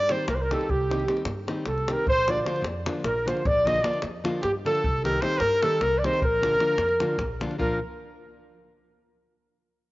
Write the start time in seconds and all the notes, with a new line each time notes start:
Already playing: G2 D5
0.09 D#3 G3 C4 D#4 G4 C5, davul high
0.28 C2 A#4, davul high
0.35 C5
0.41 A#4
0.50 D#3 G3 C4 D#4 G4 A4, davul high
0.61 davul high
0.69 C2 G4, davul low
0.89 D#3 G3 C4 D#4 G4, davul high
1.00 davul high
1.07 D#3 G3 C4 D#4 G4, davul high
1.17 davul high
1.25 G2, davul high
1.47 D#3 G3 C4 D#4 G4, davul high
1.65 C2 A4, davul high
1.78 davul high
1.87 D#3 G3 C4 D#4 G4, davul high
1.92 A#4
2.06 A#1 C5, davul low
2.28 D3 F3 A#3 D4 F4 D5, davul high
2.38 D5, davul high
2.44 D3 F3 A#3 D4 F4 C5, davul high
2.56 davul high
2.62 F2, davul high
2.85 D3 F3 A#3 D4 F4, davul high
3.04 A#1 A#4, davul high
3.25 D3 F3 A#3 D4 F4 C5, davul high
3.37 davul high
3.45 A#1 D5, davul low
3.65 D3 F3 A#3 D4 F4 D#5, davul high
3.76 davul high
3.82 D3 F3 A#3 D4 F4 D5, davul high
3.93 davul high
4.02 F2, davul high
4.24 D3 F3 A#3 D4 F4, davul high
4.41 G2 G4, davul high
4.65 D3 F3 A#3 D4 F4 A4, davul high
4.75 davul high
4.84 C2, davul low
5.04 D#3 G3 C4 D#4 G4 A#4, davul high
5.13 davul high
5.21 D#3 G3 C4 D#4 G4 C5, davul high
5.32 davul high
5.39 G2 A#4, davul high
5.62 D#3 G3 C4 D#4 G4 A4, davul high
5.81 C2 A#4, davul high
5.98 D5
6.03 D#3 G3 C4 D#4 G4 C5, davul high
6.14 davul high
6.22 A#1 A#4, davul low
6.42 D3 F3 A#3 D4 F4, davul high
6.59 D3 F3 A#3 D4 F4, davul high
6.77 F2, davul high
6.89 davul high
7.00 D3 F3 A#3 D4 F4, davul high
7.18 A#1, davul high, davul low
7.40 D3 F3 A#3 D4 F4, davul high
7.51 davul high
7.58 A#1 F3 A#3 D4 F4 A#4, davul low